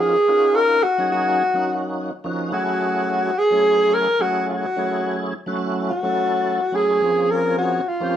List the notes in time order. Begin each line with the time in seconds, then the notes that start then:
Already playing: F3 A#3 C#4 D#4 F4
0.00 G#4
0.28 A#3 C#4 D#4 F4 F#4
0.56 A#4
0.83 F#4
0.98 F#3 A#3 C#4 D#4 G#4
1.12 F#4
1.54 F#3 A#3 C#4 D#4 F#4
2.24 F3 A#3 C#4 D#4 F#4
2.51 F#3 A3 C#4 E4 F#4 G#4
3.38 G#4
3.50 F#3 A3 C#4 E4 G#4
3.94 A#4
4.19 F#3 A3 C#4 E4 F#4 G#4
4.49 F#4
4.76 F#3 A3 C#4 E4 G#4
5.46 F#3 A3 C#4 E4 F#4
5.90 F#4
6.03 F#3 A3 C#4 E4 A4
6.72 F#3 A3 C#4 E4 G#4
7.01 F3 A#3 C4 C#4 G#4
7.31 A#4
7.58 F#4
7.88 F4
8.00 F3 A#3 C4 C#4 G4